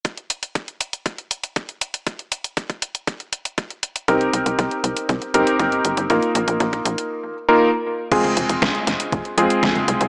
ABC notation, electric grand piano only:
X:1
M:4/4
L:1/16
Q:1/4=119
K:Fm
V:1 name="Electric grand piano"
z16 | z16 | [CEGB]8- [CEGB]2 [CEGB]6 | [B,EFB]8- [B,EFB]2 z [B,EFB]2 z3 |
[A,CFA]8- [A,CFA]2 [A,CFA]6 |]